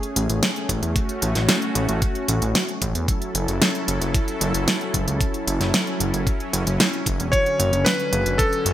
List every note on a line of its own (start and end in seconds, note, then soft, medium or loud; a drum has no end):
0.00 3.04 A3 medium
0.00 3.04 C#4 medium
0.00 0.94 G#4 medium
0.00 closed hi-hat soft
0.16 0.28 A1 medium
0.16 closed hi-hat loud
0.29 0.42 A1 medium
0.29 closed hi-hat medium
0.43 snare loud
0.43 closed hi-hat medium
0.56 closed hi-hat soft
0.69 0.81 A1 medium
0.69 kick medium
0.69 closed hi-hat medium
0.82 0.95 E2 medium
0.82 closed hi-hat medium
0.96 3.06 F#4 medium
0.96 kick loud
0.96 closed hi-hat medium
1.09 closed hi-hat soft
1.22 1.34 A1 medium
1.22 closed hi-hat medium
1.35 1.48 A1 medium
1.35 snare soft
1.35 closed hi-hat medium
1.49 snare loud
1.49 closed hi-hat medium
1.62 closed hi-hat soft
1.75 1.88 A1 medium
1.75 closed hi-hat medium
1.89 2.01 A1 medium
1.89 closed hi-hat medium
2.02 kick loud
2.02 closed hi-hat medium
2.15 closed hi-hat soft
2.28 2.41 A1 medium
2.28 closed hi-hat loud
2.42 2.54 A1 medium
2.42 closed hi-hat medium
2.55 snare loud
2.55 closed hi-hat medium
2.68 closed hi-hat soft
2.82 2.94 A1 medium
2.82 kick medium
2.82 closed hi-hat medium
2.95 3.07 E2 medium
2.95 closed hi-hat medium
3.08 7.29 F#3 medium
3.08 8.73 C#4 medium
3.08 7.29 E4 medium
3.08 7.29 A4 loud
3.08 kick loud
3.08 closed hi-hat medium
3.22 closed hi-hat soft
3.35 3.47 F#1 medium
3.35 closed hi-hat medium
3.48 3.60 F#1 medium
3.48 closed hi-hat medium
3.62 snare loud
3.62 closed hi-hat medium
3.75 closed hi-hat soft
3.88 4.00 F#1 medium
3.88 closed hi-hat medium
4.01 4.13 F#1 medium
4.01 closed hi-hat medium
4.14 kick loud
4.14 closed hi-hat medium
4.28 closed hi-hat soft
4.41 4.53 F#1 medium
4.41 closed hi-hat loud
4.54 4.66 F#1 medium
4.54 closed hi-hat medium
4.68 snare loud
4.68 closed hi-hat medium
4.81 closed hi-hat soft
4.94 5.06 F#1 loud
4.94 kick medium
4.94 closed hi-hat medium
5.07 5.19 C#2 medium
5.07 closed hi-hat medium
5.21 kick loud
5.21 closed hi-hat medium
5.34 closed hi-hat soft
5.47 5.59 F#1 medium
5.47 closed hi-hat medium
5.60 5.73 F#1 medium
5.60 snare soft
5.60 closed hi-hat medium
5.74 snare loud
5.74 closed hi-hat soft
5.87 closed hi-hat soft
6.00 6.12 F#1 medium
6.00 closed hi-hat medium
6.14 6.26 F#1 medium
6.14 closed hi-hat medium
6.27 kick loud
6.27 closed hi-hat soft
6.40 closed hi-hat soft
6.53 6.65 F#1 medium
6.53 closed hi-hat medium
6.67 6.79 F#1 medium
6.67 closed hi-hat medium
6.80 snare loud
6.80 closed hi-hat medium
6.93 closed hi-hat soft
7.06 7.19 F#1 loud
7.06 kick medium
7.06 closed hi-hat medium
7.20 7.32 E1 medium
7.20 closed hi-hat soft
7.32 8.73 D3 medium
7.32 8.73 F#3 medium
7.32 7.87 C#5 loud
7.32 kick loud
7.32 closed hi-hat medium
7.46 closed hi-hat soft
7.60 7.72 F#1 medium
7.60 closed hi-hat medium
7.73 7.85 F#1 medium
7.73 closed hi-hat medium
7.85 8.40 B4 loud
7.85 snare loud
7.85 closed hi-hat soft
7.99 closed hi-hat soft
8.12 8.25 F#1 medium
8.12 closed hi-hat medium
8.26 8.38 F#1 medium
8.26 closed hi-hat medium
8.38 8.73 A4 loud
8.38 kick loud
8.38 closed hi-hat soft
8.53 closed hi-hat soft
8.66 8.73 F#1 medium
8.66 closed hi-hat medium